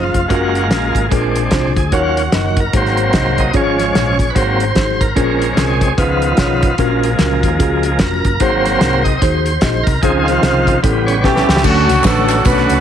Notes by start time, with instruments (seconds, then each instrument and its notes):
Already playing: fingered electric bass F#1, tonewheel organ F3, tine electric piano C#4 F4 G#4 C5
0.03 tonewheel organ F4
0.14 fingered electric bass F1, kick, closed hi-hat
0.28 fingered electric bass F#1, tonewheel organ G#3 A#3 F4 F#4, tine electric piano C#4 F4 F#4 A#4, kick, closed hi-hat
0.55 closed hi-hat
0.71 fingered electric bass A#1, tine electric piano C#4 F4 F#4 A#4, snare, closed hi-hat
0.95 fingered electric bass G#1, kick, closed hi-hat
1.09 fingered electric bass A#1, tine electric piano A#2 D4 F4 G#4 A#4, tonewheel organ G#3 C4 D4, kick, closed hi-hat
1.36 closed hi-hat
1.51 fingered electric bass C2, tine electric piano D4 F4 G#4 C5, kick, snare, closed hi-hat
1.76 fingered electric bass D2, tonewheel organ G#4, kick, closed hi-hat
1.92 fingered electric bass D#2, tine electric piano D#3 D#4 F#4 A#4 C#5, tonewheel organ F#3 C#4 F4 F#4, kick, closed hi-hat
2.17 closed hi-hat
2.32 fingered electric bass F#1, tine electric piano D#4 F#4 A#4 D#5, snare, closed hi-hat
2.57 tonewheel organ A#4, kick, closed hi-hat
2.73 fingered electric bass G#1, tine electric piano G#2 D#4 F#4 G#4 C5, tonewheel organ F#3 A#3 C4 C5, kick, closed hi-hat
2.85 snare
2.97 closed hi-hat
3.13 fingered electric bass C2, tine electric piano D#4 F#4 G#4 D#5, kick, snare, closed hi-hat
3.38 tonewheel organ D#5, kick, closed hi-hat
3.54 fingered electric bass G#1, tine electric piano G#2 C#4 F4 G#4 C#5, tonewheel organ F3 G#3 C#4 C#5, kick, closed hi-hat
3.79 snare, closed hi-hat
3.95 fingered electric bass A#1, tine electric piano C#4 F4 G#4 C#5, snare, closed hi-hat
4.19 tonewheel organ C#5, kick, closed hi-hat
4.30 tonewheel organ B4
4.35 fingered electric bass G#1, tine electric piano G#2 D#4 F#4 G#4 C5, tonewheel organ F#3 A#3 C4 C5, kick, closed hi-hat
4.60 closed hi-hat
4.75 fingered electric bass G#1, tine electric piano D#4 F#4 G#4 C5, kick, snare, closed hi-hat
5.01 tonewheel organ A#4, kick, closed hi-hat
5.16 fingered electric bass A#1, tine electric piano A#2 C#4 F4 G#4 A#4, tonewheel organ G#3 C4 C#4, kick, closed hi-hat
5.42 closed hi-hat
5.57 fingered electric bass C2, tine electric piano C#4 F4 G#4 A#4, tonewheel organ G#4, snare, closed hi-hat
5.81 kick, closed hi-hat
5.97 fingered electric bass C#2, tine electric piano C#3 C#4 F4 G#4 B4, tonewheel organ D#3 F3 B3 F4, kick, closed hi-hat
6.22 closed hi-hat
6.37 fingered electric bass B1, tine electric piano C#4 F4 G#4 C#5, kick, snare, closed hi-hat
6.63 kick, closed hi-hat
6.78 fingered electric bass A#1, tine electric piano A#2 C#4 F4 F#4 A#4, tonewheel organ F3 G#3 A#3, kick, closed hi-hat
7.03 closed hi-hat
7.19 fingered electric bass C#2, tine electric piano C#4 F4 F#4 A#4, snare, closed hi-hat
7.43 fingered electric bass D#2, kick, closed hi-hat
7.59 fingered electric bass C#2, tine electric piano C#4 F4 F#4 G#4, kick, closed hi-hat
7.83 tonewheel organ F3 G#3 A#3, closed hi-hat
7.99 fingered electric bass F1, tine electric piano C#4 F4 F#4 A#4, tonewheel organ A#4, kick, snare, closed hi-hat
8.25 fingered electric bass F#1, kick, closed hi-hat
8.40 fingered electric bass G#1, tine electric piano G#2 D#4 F#4 G#4 C5, tonewheel organ F#3 A#3 C4 C5, kick, closed hi-hat
8.65 tonewheel organ C5, snare, closed hi-hat
8.81 fingered electric bass C2, tine electric piano D#4 F#4 G#4 A#4, snare, closed hi-hat
9.04 tonewheel organ D#5, kick, closed hi-hat
9.19 fingered electric bass D#2, tine electric piano D#4 F#4 G#4 C5, tonewheel organ C5, kick, closed hi-hat
9.46 closed hi-hat
9.61 fingered electric bass A#1, tine electric piano D#4 F#4 G#4 D#5, kick, snare, closed hi-hat
9.83 fingered electric bass C2, tonewheel organ A#4, kick, closed hi-hat
10.02 fingered electric bass C#2, tine electric piano C#3 C#4 F4 G#4 C5, tonewheel organ D#3 F3 C4 G#4, kick, closed hi-hat
10.19 tonewheel organ G#4
10.25 tonewheel organ F4, snare, closed hi-hat
10.43 fingered electric bass C2, tine electric piano C#4 F4 G#4 C5, snare, closed hi-hat
10.67 kick, closed hi-hat
10.83 fingered electric bass A1, tine electric piano A2 C#4 E4 G4 A4, tonewheel organ C#3 G3 B3, kick, closed hi-hat
11.06 tonewheel organ C#5, closed hi-hat
11.24 fingered electric bass B1, tine electric piano C#4 E4 G4 B4, horn section C#4 E4 G4, tonewheel organ A4, kick, snare
11.36 snare
11.48 fingered electric bass C#2, snare
11.56 snare
11.63 fingered electric bass D2, tine electric piano D3 A3 C#4 D4 F#4 A4, tonewheel organ D3 F#3 A3 C#4 F#4, horn section A3 C#4 F#4, kick, crash, tambourine
11.88 fingered electric bass C#2, snare, closed hi-hat, tambourine
12.04 fingered electric bass A1, tine electric piano A3 C#4 D4 F#4 B4, horn section C#4 F#4 A4, kick, snare, clap, closed hi-hat, tambourine
12.29 clap, closed hi-hat, tambourine
12.45 fingered electric bass B1, tine electric piano A3 C#4 D4 F#4 B4, horn section F#4 B4, kick, closed hi-hat, tambourine
12.57 snare
12.70 fingered electric bass C#2, closed hi-hat, tambourine